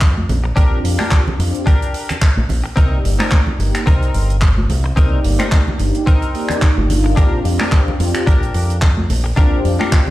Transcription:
Already playing: F2
0.01 kick, clap, closed hi-hat
0.17 high conga
0.29 A#1, open hi-hat, low conga
0.44 muted clean electric guitar stroke
0.56 A#1 C4 D4 F4 G4 A#4, kick, closed hi-hat
0.84 F2, open hi-hat
0.99 D4 G4 A#4, finger snap, high conga
1.11 kick, clap, closed hi-hat
1.27 low conga
1.38 F2 C4 D4 F4 G4, muted clean electric guitar stroke, open hi-hat
1.54 closed hi-hat
1.66 D4 G4 A#4, kick, closed hi-hat
1.82 closed hi-hat
1.94 open hi-hat
2.09 finger snap, closed hi-hat, low conga
2.22 kick, clap, closed hi-hat
2.37 A#1, high conga
2.49 A#1, open hi-hat, low conga
2.64 muted clean electric guitar stroke
2.76 C2 A#3 C4 D#4 G4 A#4 D5, kick, closed hi-hat
3.04 G1, open hi-hat
3.19 C4 D#4 A#4, finger snap, high conga
3.31 kick, clap, closed hi-hat
3.47 low conga
3.59 G1 A#3 D4 D#4 G4, muted clean electric guitar stroke, open hi-hat
3.75 finger snap, closed hi-hat
3.86 C2 C4 D#4 A#4, kick, closed hi-hat
4.02 closed hi-hat
4.14 G1, open hi-hat
4.30 closed hi-hat
4.41 kick, clap, closed hi-hat
4.58 high conga
4.69 C2, open hi-hat, low conga
4.84 muted clean electric guitar stroke
4.96 C2 A#3 C4 D#4 G4 A#4 D5, kick, closed hi-hat
5.24 G1, open hi-hat
5.39 C4 D#4 A#4, finger snap, closed hi-hat, high conga
5.52 kick, clap, closed hi-hat
5.68 low conga
5.79 G1 A#3 D4 D#4 G4, muted clean electric guitar stroke, open hi-hat
5.94 closed hi-hat
6.06 C4 D#4 A#4, kick, closed hi-hat
6.22 closed hi-hat
6.34 A#3 D#4 G4 D5, open hi-hat
6.49 finger snap, closed hi-hat, low conga
6.62 kick, clap, closed hi-hat
6.77 G1, high conga
6.89 A#3 D4 D#4 F4, open hi-hat, low conga
7.04 muted clean electric guitar stroke
7.16 A#1 C4 D4 F4 G4 A#4, kick, closed hi-hat
7.45 F2, open hi-hat
7.59 D4 G4 A#4, finger snap, high conga
7.72 kick, clap, closed hi-hat
7.88 low conga
7.99 F2 C4 D4 F4 G4, muted clean electric guitar stroke, open hi-hat
8.15 finger snap, closed hi-hat
8.27 A#1 D4 G4 A#4, kick, closed hi-hat
8.43 closed hi-hat
8.54 F2, open hi-hat
8.70 closed hi-hat
8.82 kick, clap, closed hi-hat
8.97 high conga
9.09 A#1, open hi-hat, low conga
9.24 muted clean electric guitar stroke
9.36 A#1 C4 D4 F4 G4 A#4, kick, closed hi-hat
9.65 F2, open hi-hat
9.79 D4 G4 A#4, finger snap, high conga
9.92 kick, clap, closed hi-hat

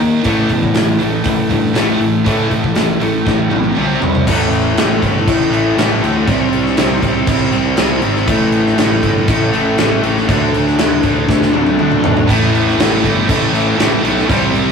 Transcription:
Already playing: D#3 A#3 D#4
0.00 D#2 D#3 A#3
0.24 A1 A2 E3 A3, kick, open hi-hat
0.49 E2 A2 E3, kick, open hi-hat
0.63 kick
0.75 A1 A2 E3, snare, open hi-hat
1.00 A1 A2 E3 A3, open hi-hat
1.24 A1 A2 E3, kick, open hi-hat
1.50 G2 A2 E3, kick, open hi-hat
1.75 A1 A2 E3 A3, snare, open hi-hat
2.01 A1 A2 E3, open hi-hat
2.26 A2 E3 A3, kick, open hi-hat
2.51 A2 E3, kick, open hi-hat
2.64 kick
2.75 A1 A2 E3, snare, open hi-hat
3.01 A1 A2 E3 A3, open hi-hat
3.26 A1 A2 E3, kick, snare
3.51 B1 A2 E3, high tom
3.64 high tom
3.76 C2 C3 G3 C4, mid tom
4.02 C2 C3 G3, floor tom
4.15 floor tom
4.27 A1 A2 E3 A3, kick, crash
4.53 crash
4.76 A1 A2 E3 A3, snare, crash
5.01 G1 A2 E3 A3, kick, crash
5.27 A1 A2 E3 A3, kick, crash
5.50 A2 E3 A3, crash
5.76 A1 A2 E3 A3, snare, crash
6.01 D2 A2 E3 A3, crash
6.27 C2 C3 G3 C4, kick, crash
6.53 C2, crash
6.66 snare
6.77 C2 C3 G3 C4, snare, crash
7.02 C2 C3 G3 C4, kick, crash
7.27 C2 C3 G3 C4, kick, crash
7.52 C2 C3 G3 C4, crash
7.77 C2 C3 G3 C4, snare, crash
8.02 G#1 C3 G3 C4, crash
8.16 snare
8.27 A1 A2 E3 A3, kick, crash
8.52 crash
8.66 snare
8.78 A1 A2 E3 A3, snare, crash
9.03 G1 A2 E3 A3, kick, crash
9.28 A1 A2 E3 A3, kick, crash
9.53 A2 E3 A3, crash
9.77 A1 A2 E3 A3, snare, crash
10.02 A1 A2 E3 A3, crash
10.17 snare
10.28 D2 D3 A3 D4, kick, crash
10.54 D2, crash
10.67 snare
10.78 D2 D3 A3 D4, snare, crash
11.03 D2 D3 A3 D4, kick, crash
11.28 D2 D3 A3 D4, kick, snare
11.42 snare
11.52 D2 D3 A3 D4, high tom
11.66 high tom
11.79 D2 D3 A3 D4, mid tom
11.92 mid tom
12.03 B1 D3 A3 D4, floor tom
12.17 floor tom
12.28 A1 A2 E3 A3, kick, splash, crash
12.55 crash
12.69 snare
12.78 A1 A2 E3 A3, snare, crash
13.04 G1 A2 E3 A3, kick, crash
13.29 A1 A2 E3 A3, kick, crash
13.52 A2 E3 A3, crash
13.78 A1 A2 E3 A3, snare, crash
14.03 B1 A2 E3 A3, crash
14.18 snare
14.29 C2 C3 G3 C4, kick, crash
14.54 C2, crash
14.68 snare

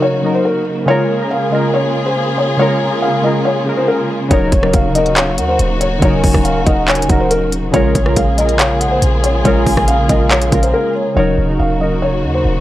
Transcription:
Already playing: C#3 F#3 A#3 D#4 F#4 A#4
0.02 C#5
0.21 C#3 F#3 D#4
0.26 A#4
0.34 C5
0.45 A#4
0.86 C#3 G#3 F4 G#4 C#5
0.90 A#4
1.18 C#3 G#3 F4
1.23 A#4
1.31 F5
1.50 C#3 G#3 F4 D#5
1.55 A#4
1.74 C#5
2.06 C5
2.38 C#5
2.57 C#3 G#3 F4 C#5
2.62 A#4
3.02 F5
3.21 C#3 G#3 F4 D#5
3.26 A#4
3.45 C#5
3.64 C#3 G#3 F4
3.69 A#4
3.77 C5
3.88 A#4
4.29 D#1 C#3 F#3 A#3 D#4 F#4 C#5, kick, closed hi-hat
4.33 A#4
4.52 D#1, kick, closed hi-hat
4.61 C#3 F#3 D#4, cross-stick
4.65 A#4
4.74 D#1 F5, kick, closed hi-hat
4.93 C#3 F#3 D#4 D#5, closed hi-hat
4.97 A#4
5.06 closed hi-hat
5.16 C#5 F5, clap, closed hi-hat
5.38 D#2 F#5, closed hi-hat
5.49 C5
5.59 D#1, closed hi-hat
5.81 C#5, closed hi-hat
6.00 D#1 C#3 F#3 D#4 C#5 G#5, kick, closed hi-hat
6.05 A#4
6.24 D#1, kick, open hi-hat
6.34 D#1, kick, cross-stick
6.45 F5, closed hi-hat
6.64 D#1 C#3 F#3 D#4 D#5 F#5, kick, closed hi-hat
6.69 A#4
6.88 C#5 G#5, clap, closed hi-hat
6.95 closed hi-hat
7.02 closed hi-hat
7.07 D#1 C#3 F#3 D#4 F#5, kick, closed hi-hat
7.12 A#4
7.20 C5
7.31 A#4, closed hi-hat
7.52 closed hi-hat
7.71 A#1 C#3 G#3 A#3 F4 G#4 C#5, kick, closed hi-hat
7.76 A#4
7.95 A#1, kick, closed hi-hat
8.04 C#3 G#3 F4, cross-stick
8.08 A#4
8.16 A#1 F5, kick, closed hi-hat
8.36 C#3 G#3 F4 D#5, closed hi-hat
8.40 A#4
8.49 closed hi-hat
8.59 C#5 F5, clap, closed hi-hat
8.81 F#5, closed hi-hat
8.92 C5
9.02 A#1, closed hi-hat
9.24 C#5, closed hi-hat
9.43 A#1 C#3 G#3 F4 C#5 G#5, kick, closed hi-hat
9.47 A#4
9.66 A#1, kick, open hi-hat
9.77 A#1, kick, cross-stick
9.88 F5, closed hi-hat
10.07 A#1 C#3 G#3 F4 D#5 F5, kick, closed hi-hat
10.12 A#4
10.31 C#5, clap, closed hi-hat
10.42 closed hi-hat
10.50 A#1 C#3 G#3 F4, kick, closed hi-hat
10.55 A#4
10.63 C5, closed hi-hat
10.74 A#4
10.95 C#5
11.14 D#1 C#3 F#3 A#3 D#4 F#4 C#5
11.19 A#4
11.38 D#1
11.46 C#3 F#3 D#4
11.51 A#4
11.59 D#1 F5
11.78 C#3 F#3 D#4 D#5
11.83 A#4
12.02 C#5
12.24 D#2
12.34 C5
12.45 D#1

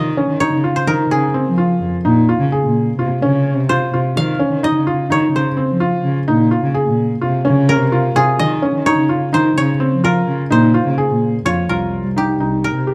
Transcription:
Already playing: D#3 C#5 D#5
0.17 C#4
0.29 D#3
0.40 D#4 C#5
0.53 C#3
0.64 F4
0.76 C5
0.87 D#3 D#4 A#4
1.10 C#3 G#4
1.34 C4
1.46 F3
1.58 F4
1.81 F2
2.05 A#2 D#4
2.29 F4
2.40 C#3
2.52 G#4
2.63 A#2
2.98 C3 F4
3.22 C#3 C#4
3.58 C3
3.69 F4 C5
3.93 C3 F4
4.16 D#3 F5
4.39 C#4
4.51 D#3
4.63 D#4 D#5
4.75 C#3
4.87 F4
5.10 D#3 D#4 C#5
5.33 C#3 C5
5.57 C4
5.69 F3
5.80 F4
6.04 C#3
6.28 A#2 D#4
6.51 F4
6.63 C#3
6.74 G#4
6.87 A#2
7.21 C3 F4
7.45 C#3 C#4
7.69 A#4
7.81 C3
7.92 F4
8.16 C3 F4 G#4
8.39 D#3 D#5
8.62 C#4
8.75 D#3
8.86 D#4 C#5
8.98 C#3
9.09 F4
9.33 D#3 D#4 C5
9.57 C#3 C#5
9.80 C4
9.92 F3
10.04 F4 A#4
10.27 C#3
10.50 A#2 D#4 C5
10.74 F4
10.86 C#3
10.98 G#4
11.10 A#2
11.45 F2 F4 C#5
11.69 C2 F4 A#4
12.04 C2
12.16 D#4 G4
12.40 C2 D#4
12.64 A#4
12.75 C3
12.87 G4

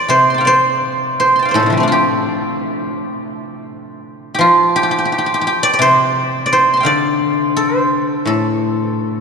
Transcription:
Already playing: D5
0.09 C3 C5
0.30 C6
0.34 G5 A5
0.41 F5
0.45 C5 D5
1.20 C5
1.36 A5 C6
1.42 F5 G5
1.49 C5 D5
1.54 A2 A4
1.60 A2 C3
1.66 D3 F3
1.72 G3
1.77 A3 C4
1.83 D4
1.88 F4
1.92 G4
4.35 G4
4.39 F3 F4
4.76 G4
4.83 G4
4.91 G4
4.98 G4
5.05 G4
5.12 G4
5.18 G4
5.26 G4
5.34 G4
5.41 G4
5.47 G4
5.63 D5
5.73 D5
5.79 C3 C5
6.46 D5
6.53 C5
6.74 A5 C6
6.80 F5 G5
6.85 D3 D5
7.57 A4
7.78 C5
8.26 A2 A4

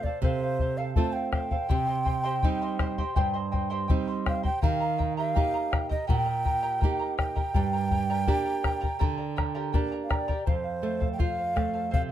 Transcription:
0.03 A4 C5 D5 F5, bombo low
0.22 C3 A4 C5 F5, bombo low
0.42 C5 F5
0.59 A4 C5 F5, bombo low
0.78 A4 C5 F5
0.95 A3 C4 F4 A4 C5 F5 A5, bombo low
1.13 C5 F5 G5
1.32 A4 C5 F5 G5, bombo rim, bombo low
1.51 A4 C5 F5, bombo low
1.68 C3 G4 C5 D#5 G5 C6, bombo low
1.87 C5 D#5 C6
2.05 C5 D#5 G5 C6, bombo low
2.24 G4 C5 D#5 G5 C6
2.42 G3 C4 D#4 C5 D#5 G5 C6, bombo low
2.62 C5 D#5 C6
2.79 C5 D#5 G5 C6, bombo rim, bombo low
2.98 G4 C5 D#5 G5 C6, bombo low
3.16 G2 G4 C5 D#5 G5 C6, bombo low
3.34 C5 D#5 C6
3.51 C5 D#5 G5 C6, bombo low
3.70 G4 C5 D#5 G5 C6
3.88 G3 C4 D#4 C5 D#5 G5 C6, bombo low
4.08 C5 D#5 C6
4.26 C5 D#5 F5 G5 C6, bombo rim, bombo low
4.43 G4 C5 D#5 G5 C6, bombo low
4.62 D#3 G4 A#4 D#5 F5 G5 A#5, bombo low
4.80 A#4 D#5 A#5
4.98 A#4 D#5 G5 A#5, bombo low
5.17 G4 A#4 D#5 F5 G5 A#5
5.34 A#3 D#4 G4 A#4 D#5 G5 A#5, bombo low
5.54 A#4 D#5 A#5
5.71 A#4 D#5 G5 A#5, bombo rim, bombo low
5.89 G4 A#4 D#5 G5 A#5, bombo low
6.07 A#2 G4 A#4 D#5 G5 A#5, bombo low
6.25 A#4 D#5 A#5
6.44 A#4 D#5 G5 A#5, bombo low
6.63 G4 A#4 D#5 G5 A#5
6.80 A#3 A#4 D#5 G5 A#5, bombo low
6.84 D#4 G4
6.99 A#4 D#5 A#5
7.17 A#4 D#5 G5 A#5, bombo rim, bombo low
7.36 G4 A#4 D#5 G5 A#5, bombo low
7.54 G2 G4 A#4 D5 G5 A#5, bombo low
7.73 A#4 D5 A#5
7.91 A#4 D5 G5 A#5, bombo low
8.10 G4 A#4 D5 G5 A#5
8.27 A#3 D4 G4 A#4 D5 G5 A#5, bombo low
8.45 A#4 D5 A#5
8.63 A#4 D5 G5 A#5, bombo rim, bombo low
8.81 G4 A#4 D5 G5 A#5, bombo low
8.99 D3 G4 A#4 D5 G5 A#5, bombo low
9.17 A#4 D5 A#5
9.36 A#4 D5 G5 A#5, bombo rim, bombo low
9.55 G4 A#4 D5 G5 A#5
9.73 A#3 D4 G4 A#4 D5 G5 A#5, bombo low
9.92 A#4 D5 A#5
10.03 F5
10.09 A#4 D5 G5 A#5, bombo rim, bombo low
10.28 G4 A#4 D5 G5 A#5, bombo low
10.46 F2 A4 C5 F5, bombo low
10.64 C5 F5
10.82 A3 A4 C5 F5
11.00 A4 C5 F5, bombo low
11.13 G5
11.18 F4 A4 C5 F5, bombo low
11.36 C5 F5
11.55 A3 A4 C5 F5, bombo rim, bombo low
11.74 A4 C5 F5
11.91 C3 A4 C5 F5, bombo low

